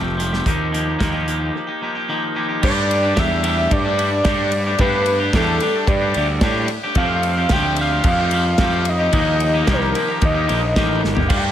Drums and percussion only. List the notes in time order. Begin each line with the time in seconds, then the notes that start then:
0.20 snare, closed hi-hat
0.33 snare
0.46 kick, closed hi-hat
0.74 closed hi-hat
1.00 kick, snare, closed hi-hat
1.28 closed hi-hat
2.63 kick, crash
2.91 ride
3.17 kick, snare, ride
3.44 ride
3.71 kick, ride
3.99 ride
4.25 kick, snare, ride
4.52 ride
4.78 kick, ride
5.06 ride
5.33 kick, snare, ride
5.60 ride
5.87 kick, ride
6.14 ride
6.41 kick, snare, ride
6.68 ride
6.95 kick, ride
7.23 ride
7.49 kick, snare, ride
7.76 ride
8.04 kick, ride
8.31 ride
8.58 kick, snare, ride
8.85 ride
9.13 kick, ride
9.40 ride
9.67 kick, snare, ride
9.95 ride
10.21 kick, ride
10.49 ride
10.76 kick, snare, ride
11.04 snare
11.17 floor tom
11.30 kick, crash, ride